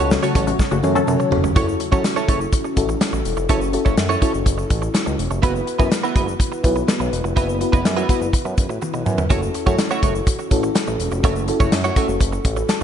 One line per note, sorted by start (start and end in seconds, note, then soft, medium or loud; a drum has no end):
0.00 0.17 C#2 loud
0.00 1.54 C#3 medium
0.00 1.54 F#3 medium
0.00 1.54 A3 medium
0.00 0.35 C#4 medium
0.00 0.35 F#4 medium
0.00 1.54 F#4 medium
0.00 0.10 A4 medium
0.00 0.35 A4 medium
0.00 0.10 C#5 medium
0.00 0.36 C#5 medium
0.11 muted clean electric guitar stroke soft
0.11 snare loud
0.11 shaker medium
0.23 0.33 C#3 medium
0.23 0.33 A3 medium
0.23 0.34 C#4 medium
0.23 0.33 F#4 medium
0.23 0.34 F#4 medium
0.23 0.34 A4 medium
0.23 0.35 C#5 medium
0.23 closed hi-hat medium
0.23 shaker medium
0.35 0.53 A1 loud
0.35 0.68 C#4 medium
0.35 0.50 C#4 medium
0.35 0.69 F#4 medium
0.35 0.47 F#4 medium
0.35 0.69 A4 medium
0.35 0.46 A4 medium
0.35 0.69 C#5 medium
0.35 0.46 C#5 medium
0.35 kick medium
0.35 closed hi-hat medium
0.35 shaker medium
0.47 0.57 C#3 medium
0.47 0.57 A3 medium
0.47 0.57 F#4 loud
0.47 muted clean electric guitar stroke soft
0.47 closed hi-hat medium
0.47 shaker medium
0.59 muted clean electric guitar stroke soft
0.59 kick medium
0.59 snare medium
0.59 shaker medium
0.71 0.81 F#1 loud
0.71 0.82 C#3 loud
0.71 0.82 A3 medium
0.71 0.82 F#4 loud
0.71 muted clean electric guitar stroke soft
0.71 shaker soft
0.83 1.01 F#2 loud
0.83 1.17 C#4 medium
0.83 1.17 F#4 medium
0.83 1.17 A4 medium
0.83 1.17 C#5 medium
0.83 high tom medium
0.83 shaker soft
0.95 1.30 F#3 loud
0.95 1.30 C#4 loud
0.95 1.30 A4 loud
0.95 muted clean electric guitar stroke soft
0.95 high tom medium
0.95 shaker soft
1.07 1.17 F#2 loud
1.07 muted clean electric guitar stroke soft
1.07 mid tom medium
1.07 shaker medium
1.20 muted clean electric guitar stroke soft
1.20 shaker soft
1.31 1.41 F#1 medium
1.31 1.48 C#4 medium
1.31 1.48 F#4 medium
1.31 1.48 A4 medium
1.31 1.49 C#5 medium
1.31 floor tom medium
1.44 1.53 F1 medium
1.44 muted clean electric guitar stroke soft
1.44 floor tom medium
1.44 shaker medium
1.55 1.74 F#1 loud
1.55 1.81 C#4 medium
1.55 1.75 C#4 medium
1.55 1.81 E4 medium
1.55 1.67 E4 medium
1.55 1.81 F#4 medium
1.55 1.81 A4 medium
1.55 1.67 A4 medium
1.55 1.67 C#5 medium
1.55 kick loud
1.55 closed hi-hat medium
1.55 shaker medium
1.68 muted clean electric guitar stroke soft
1.68 shaker soft
1.80 muted clean electric guitar stroke soft
1.80 closed hi-hat medium
1.80 shaker soft
1.91 2.01 F#2 loud
1.91 2.51 C#4 medium
1.91 2.03 C#4 soft
1.91 2.51 E4 medium
1.91 2.03 E4 medium
1.91 2.51 F#4 medium
1.91 2.03 A4 medium
1.91 2.51 A4 medium
1.91 2.04 C#5 medium
1.91 kick medium
1.91 shaker soft
2.04 muted clean electric guitar stroke soft
2.04 snare loud
2.04 closed hi-hat medium
2.04 shaker medium
2.16 2.27 C#4 medium
2.16 2.28 E4 medium
2.16 2.28 A4 medium
2.16 2.28 C#5 medium
2.16 shaker soft
2.28 2.47 F#1 medium
2.28 2.44 C#4 medium
2.28 2.40 E4 medium
2.28 2.40 A4 medium
2.28 2.39 C#5 medium
2.28 kick medium
2.28 closed hi-hat medium
2.28 shaker soft
2.41 muted clean electric guitar stroke soft
2.41 shaker soft
2.53 muted clean electric guitar stroke soft
2.53 kick medium
2.53 closed hi-hat medium
2.53 shaker medium
2.64 muted clean electric guitar stroke soft
2.64 shaker soft
2.76 2.95 A1 medium
2.76 3.27 C#4 medium
2.76 3.27 E4 medium
2.76 3.27 F#4 medium
2.76 3.28 A4 medium
2.76 kick medium
2.76 closed hi-hat medium
2.76 shaker soft
2.89 muted clean electric guitar stroke soft
2.89 shaker soft
3.01 muted clean electric guitar stroke soft
3.01 snare loud
3.01 closed hi-hat medium
3.01 shaker medium
3.13 3.22 A1 medium
3.13 muted clean electric guitar stroke soft
3.13 shaker soft
3.25 3.34 E1 medium
3.25 closed hi-hat medium
3.25 shaker soft
3.37 3.47 F1 medium
3.37 muted clean electric guitar stroke soft
3.37 shaker soft
3.49 3.77 F#1 loud
3.49 3.66 C#4 medium
3.49 3.69 C#4 medium
3.49 3.66 E4 medium
3.49 3.61 E4 medium
3.49 3.66 F#4 medium
3.49 3.60 A4 medium
3.49 3.67 A4 medium
3.49 3.60 C#5 medium
3.49 kick loud
3.49 closed hi-hat medium
3.49 shaker medium
3.61 muted clean electric guitar stroke soft
3.61 shaker medium
3.73 4.07 C#4 medium
3.73 4.07 E4 medium
3.73 4.07 F#4 medium
3.73 4.08 A4 medium
3.73 muted clean electric guitar stroke soft
3.73 closed hi-hat medium
3.73 shaker soft
3.85 3.95 F#1 loud
3.85 3.96 C#4 medium
3.85 3.96 E4 soft
3.85 3.97 A4 medium
3.85 3.97 C#5 medium
3.85 kick medium
3.85 shaker soft
3.97 4.16 F#2 medium
3.97 muted clean electric guitar stroke soft
3.97 snare loud
3.97 closed hi-hat medium
3.97 shaker medium
4.09 4.20 C#4 medium
4.09 4.20 E4 medium
4.09 4.21 A4 medium
4.09 4.21 C#5 medium
4.09 shaker soft
4.21 4.37 C#4 medium
4.21 4.89 C#4 medium
4.21 4.33 E4 medium
4.21 4.89 E4 medium
4.21 4.89 F#4 medium
4.21 4.33 A4 medium
4.21 4.90 A4 medium
4.21 4.32 C#5 medium
4.21 kick medium
4.21 closed hi-hat medium
4.21 shaker soft
4.33 4.43 F#1 medium
4.33 muted clean electric guitar stroke soft
4.33 shaker soft
4.46 4.64 F#1 medium
4.46 muted clean electric guitar stroke soft
4.46 kick medium
4.46 closed hi-hat medium
4.46 shaker medium
4.58 muted clean electric guitar stroke soft
4.58 shaker soft
4.70 4.89 A1 medium
4.70 kick medium
4.70 closed hi-hat medium
4.70 shaker soft
4.82 muted clean electric guitar stroke soft
4.82 shaker soft
4.94 muted clean electric guitar stroke soft
4.94 snare loud
4.94 closed hi-hat medium
4.94 shaker medium
5.06 5.16 C#2 medium
5.06 muted clean electric guitar stroke soft
5.06 shaker soft
5.19 5.28 E1 medium
5.19 closed hi-hat medium
5.19 shaker soft
5.31 5.40 F1 medium
5.31 muted clean electric guitar stroke soft
5.31 shaker soft
5.42 5.61 F#1 medium
5.42 5.62 B3 medium
5.42 5.68 B3 medium
5.42 5.54 E4 medium
5.42 5.68 E4 medium
5.42 5.54 F#4 medium
5.42 5.68 F#4 medium
5.42 5.53 B4 medium
5.42 5.69 B4 medium
5.42 kick loud
5.42 closed hi-hat medium
5.42 shaker medium
5.55 muted clean electric guitar stroke soft
5.55 shaker soft
5.67 muted clean electric guitar stroke soft
5.67 closed hi-hat medium
5.67 shaker soft
5.79 5.88 F#2 loud
5.79 6.38 B3 medium
5.79 5.90 B3 soft
5.79 6.38 E4 medium
5.79 5.90 E4 medium
5.79 5.90 F#4 medium
5.79 6.38 F#4 medium
5.79 5.91 B4 medium
5.79 6.38 B4 medium
5.79 kick loud
5.79 shaker soft
5.91 muted clean electric guitar stroke soft
5.91 snare loud
5.91 closed hi-hat medium
5.91 shaker medium
6.03 6.14 B3 medium
6.03 6.14 E4 medium
6.03 6.15 F#4 medium
6.03 6.15 B4 medium
6.03 shaker soft
6.15 6.34 F#1 medium
6.15 6.31 B3 medium
6.15 6.27 E4 medium
6.15 6.27 F#4 medium
6.15 6.26 B4 medium
6.15 kick medium
6.15 closed hi-hat medium
6.15 shaker medium
6.27 muted clean electric guitar stroke soft
6.27 shaker medium
6.39 muted clean electric guitar stroke soft
6.39 kick medium
6.39 closed hi-hat medium
6.39 shaker medium
6.52 muted clean electric guitar stroke soft
6.52 shaker soft
6.63 6.82 B1 medium
6.63 7.14 B3 medium
6.63 7.14 E4 medium
6.63 7.15 F#4 medium
6.63 7.15 B4 medium
6.63 kick medium
6.63 closed hi-hat medium
6.63 shaker soft
6.76 muted clean electric guitar stroke soft
6.76 shaker medium
6.88 muted clean electric guitar stroke soft
6.88 snare loud
6.88 closed hi-hat medium
6.88 shaker medium
7.00 7.09 B1 medium
7.00 muted clean electric guitar stroke soft
7.00 shaker soft
7.12 7.21 E1 medium
7.12 closed hi-hat medium
7.12 shaker soft
7.24 7.33 F1 medium
7.24 muted clean electric guitar stroke medium
7.24 shaker medium
7.36 7.64 F#1 loud
7.36 7.53 B3 medium
7.36 7.56 B3 medium
7.36 7.48 E4 medium
7.36 7.54 E4 medium
7.36 7.48 F#4 medium
7.36 7.54 F#4 medium
7.36 7.47 B4 medium
7.36 7.54 B4 medium
7.36 kick loud
7.36 closed hi-hat medium
7.36 shaker medium
7.48 muted clean electric guitar stroke soft
7.48 shaker medium
7.60 7.94 B3 medium
7.60 7.94 E4 medium
7.60 7.95 F#4 medium
7.60 7.95 B4 medium
7.60 muted clean electric guitar stroke soft
7.60 closed hi-hat medium
7.60 shaker soft
7.72 7.82 F#1 medium
7.72 7.84 B3 soft
7.72 7.84 E4 medium
7.72 7.84 F#4 medium
7.72 7.84 B4 medium
7.72 kick loud
7.72 shaker soft
7.85 8.03 F#2 loud
7.85 muted clean electric guitar stroke soft
7.85 snare loud
7.85 closed hi-hat medium
7.85 shaker medium
7.97 8.08 B3 medium
7.97 8.08 E4 medium
7.97 8.08 F#4 medium
7.97 8.09 B4 medium
7.97 shaker soft
8.09 8.76 B3 medium
8.09 8.25 B3 medium
8.09 8.76 E4 medium
8.09 8.21 E4 medium
8.09 8.77 F#4 medium
8.09 8.21 F#4 medium
8.09 8.20 B4 medium
8.09 8.77 B4 medium
8.09 kick medium
8.09 closed hi-hat medium
8.09 shaker soft
8.21 8.30 F#1 medium
8.21 muted clean electric guitar stroke soft
8.21 shaker medium
8.33 muted clean electric guitar stroke soft
8.33 kick medium
8.33 closed hi-hat medium
8.33 shaker medium
8.45 8.55 F#2 medium
8.45 muted clean electric guitar stroke soft
8.45 shaker soft
8.58 8.67 F#1 medium
8.58 kick medium
8.58 closed hi-hat medium
8.58 shaker soft
8.69 8.78 A1 medium
8.69 muted clean electric guitar stroke soft
8.69 shaker medium
8.81 8.86 B1 soft
8.81 muted clean electric guitar stroke soft
8.81 high tom medium
8.81 shaker medium
8.94 9.03 B1 medium
8.94 muted clean electric guitar stroke soft
8.94 shaker soft
9.06 9.24 F#2 loud
9.06 mid tom medium
9.06 shaker medium
9.18 muted clean electric guitar stroke soft
9.18 floor tom medium
9.18 shaker soft
9.30 9.48 F#1 loud
9.30 9.49 A3 medium
9.30 9.55 C#4 medium
9.30 9.42 E4 medium
9.30 9.56 E4 medium
9.30 9.41 F#4 medium
9.30 9.56 F#4 medium
9.30 9.56 A4 medium
9.30 9.41 C#5 medium
9.30 kick loud
9.30 closed hi-hat medium
9.30 shaker medium
9.42 muted clean electric guitar stroke soft
9.42 shaker medium
9.54 muted clean electric guitar stroke soft
9.54 closed hi-hat medium
9.54 shaker soft
9.66 9.76 F#2 loud
9.66 9.77 A3 medium
9.66 10.25 C#4 medium
9.66 10.25 E4 medium
9.66 9.78 E4 medium
9.66 9.78 F#4 medium
9.66 10.26 F#4 medium
9.66 10.26 A4 medium
9.66 9.78 C#5 medium
9.66 kick medium
9.66 shaker soft
9.78 muted clean electric guitar stroke soft
9.78 snare loud
9.78 closed hi-hat medium
9.78 shaker medium
9.91 10.01 A3 medium
9.91 10.02 E4 medium
9.91 10.02 F#4 medium
9.91 10.02 C#5 medium
9.91 shaker soft
10.03 10.21 F#1 medium
10.03 10.18 A3 medium
10.03 10.14 E4 medium
10.03 10.14 F#4 medium
10.03 10.14 C#5 medium
10.03 kick medium
10.03 closed hi-hat medium
10.03 shaker medium
10.15 muted clean electric guitar stroke soft
10.15 shaker medium
10.27 muted clean electric guitar stroke soft
10.27 kick medium
10.27 closed hi-hat medium
10.27 shaker medium
10.39 muted clean electric guitar stroke soft
10.39 shaker soft
10.51 10.69 A1 medium
10.51 11.01 C#4 medium
10.51 11.01 E4 medium
10.51 11.02 F#4 medium
10.51 11.02 A4 medium
10.51 kick medium
10.51 closed hi-hat medium
10.51 shaker medium
10.63 muted clean electric guitar stroke soft
10.63 shaker soft
10.75 muted clean electric guitar stroke soft
10.75 snare loud
10.75 closed hi-hat medium
10.75 shaker medium
10.87 10.97 A1 medium
10.87 muted clean electric guitar stroke soft
10.87 shaker soft
10.99 11.08 E1 medium
10.99 closed hi-hat medium
10.99 shaker soft
11.12 11.21 F1 loud
11.12 muted clean electric guitar stroke soft
11.12 shaker medium
11.23 11.51 F#1 loud
11.23 11.43 A3 medium
11.23 11.40 C#4 medium
11.23 11.41 E4 medium
11.23 11.35 E4 medium
11.23 11.41 F#4 medium
11.23 11.35 F#4 medium
11.23 11.41 A4 medium
11.23 11.35 C#5 medium
11.23 kick loud
11.23 closed hi-hat medium
11.23 shaker medium
11.36 muted clean electric guitar stroke soft
11.36 shaker medium
11.47 11.81 C#4 medium
11.47 11.81 E4 medium
11.47 11.82 F#4 medium
11.47 11.82 A4 medium
11.47 muted clean electric guitar stroke soft
11.47 closed hi-hat medium
11.47 shaker soft
11.60 11.69 F#1 medium
11.60 11.71 A3 medium
11.60 11.71 E4 medium
11.60 11.71 F#4 medium
11.60 11.72 C#5 medium
11.60 kick loud
11.60 shaker soft
11.72 11.90 F#2 loud
11.72 muted clean electric guitar stroke soft
11.72 snare loud
11.72 closed hi-hat medium
11.72 shaker medium
11.84 11.95 A3 medium
11.84 11.95 E4 medium
11.84 11.96 F#4 medium
11.84 11.96 C#5 medium
11.84 shaker soft
11.96 12.12 A3 medium
11.96 12.63 C#4 medium
11.96 12.08 E4 medium
11.96 12.64 E4 medium
11.96 12.07 F#4 medium
11.96 12.64 F#4 medium
11.96 12.64 A4 medium
11.96 12.07 C#5 medium
11.96 kick medium
11.96 closed hi-hat medium
11.96 shaker soft
12.08 12.17 F#1 medium
12.08 muted clean electric guitar stroke soft
12.08 shaker medium
12.20 12.39 F#1 medium
12.20 muted clean electric guitar stroke soft
12.20 kick medium
12.20 closed hi-hat medium
12.20 shaker medium
12.32 muted clean electric guitar stroke soft
12.32 shaker soft
12.45 12.63 A1 loud
12.45 kick medium
12.45 closed hi-hat medium
12.45 shaker soft
12.57 muted clean electric guitar stroke soft
12.57 shaker soft
12.69 12.84 A5 medium
12.69 muted clean electric guitar stroke soft
12.69 snare loud
12.69 closed hi-hat medium
12.69 shaker medium